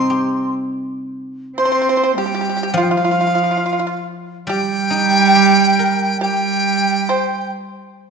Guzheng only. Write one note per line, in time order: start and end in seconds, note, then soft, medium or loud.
0.00 1.86 C3 medium
0.00 1.20 G3 soft
0.00 1.44 C4 soft
0.00 1.66 D#4 soft
0.10 1.88 G4 soft
2.74 5.34 F3 medium
4.47 7.09 G3 medium
4.90 6.65 D#4 soft
5.35 7.10 G4 soft
5.79 7.55 A#4 soft